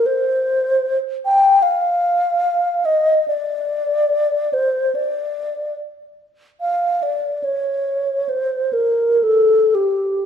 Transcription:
X:1
M:4/4
L:1/8
Q:1/4=72
K:F
V:1 name="Alto flute"
c3 g f3 _e | d3 c d2 z2 | f d _d2 c B A G |]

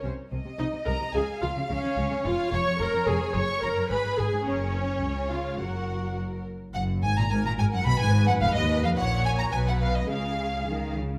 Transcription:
X:1
M:2/4
L:1/16
Q:1/4=108
K:Db
V:1 name="Violin section"
z4 e2 b2 | a2 f2 d4 | [K:F#] e2 c'2 a2 g2 | c'2 a2 b2 g2 |
c6 e2 | f4 z4 | f2 g a g a g f | _c' _a2 f =f d2 f |
f2 g a g f e d | e6 z2 |]
V:2 name="Violin section"
c2 e6 | f8 | [K:F#] c4 c4- | c4 G4 |
A2 c6 | A6 z2 | f2 g a g a g f | _c' _a2 f =f d2 f |
f2 g a g f e d | e6 z2 |]
V:3 name="Viola section"
z4 E2 B2 | A2 F2 D4 | [K:F#] E2 c2 A2 G2 | c2 A2 B2 G2 |
C6 E2 | F4 z4 | z4 A4 | _c8 |
c4 B4 | G6 z2 |]
V:4 name="Cello section" clef=bass
C, z C, C, C, C, C, C, | D, z D, D, D, D, D, D, | [K:F#] E,, z E,, E,, E,, E,, E,, E,, | F,, z F,, F,, G,, G,, G,, G,, |
F,,4 C,4 | F,,6- F,, z | F,,2 G,, A,, G,, A,, G,, F,, | _C, _A,,2 F,, =F,, D,,2 F,, |
A,,4 B,,4 | C,4 D,2 C,2 |]
V:5 name="Double bass section" clef=bass
C,, z C,, z C,, z C,, z | D,, z D,, z D,, z D,, z | [K:F#] E,,, z E,,, z E,,, z E,,, z | F,,, z F,,, z G,,, z G,,, z |
F,,,4 C,,4 | F,,,6 z2 | F,,,2 G,,, z G,,, z G,,, z | _C,, _A,,,2 z =F,,, D,,2 z |
A,,,4 B,,,4 | C,,6 z2 |]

